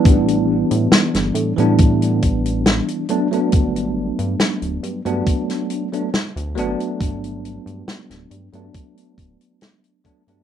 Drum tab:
HH |xx-xxxxxxxxxxxxx|xx-xxxxxxxxxxxxx|xxxxxxxxxxxxxxxx|
SD |----oo------o---|----o----o--o---|----oo------o---|
BD |o-------o-o-----|o-------o-------|o-------o-o---o-|